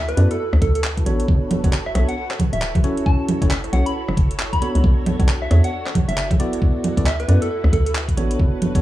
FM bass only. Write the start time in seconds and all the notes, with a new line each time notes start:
Already playing: D2
0.17 F#2
0.53 D2
0.62 D2
1.06 A1
1.28 G1
1.64 G1
1.95 B1
2.53 D1
3.42 F#1
3.73 B1
4.08 F#1
4.17 F#1
4.75 C#2
4.84 B1
5.20 B1
5.51 E2
6.08 F#1
6.97 D2
7.28 F#2
7.64 D2
7.73 D2
8.17 A1
8.39 G1
8.75 G1